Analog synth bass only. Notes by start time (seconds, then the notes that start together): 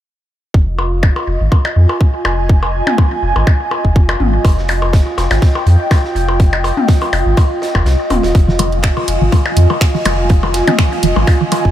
0.54 F1
1.27 F1
1.41 G#1
1.76 F2
2.25 F1
3.23 F1
3.36 G#1
3.85 F1
4.20 G#1
4.45 F1
5.18 F1
5.31 G#1
5.66 F2
6.15 F1
7.13 F1
7.26 G#1
7.75 F1
7.86 C2
8.10 D#1
8.24 D#1
8.35 F1
9.08 F1
9.21 G#1
9.57 F2
10.05 F1
11.03 F1
11.16 G#1
11.65 F1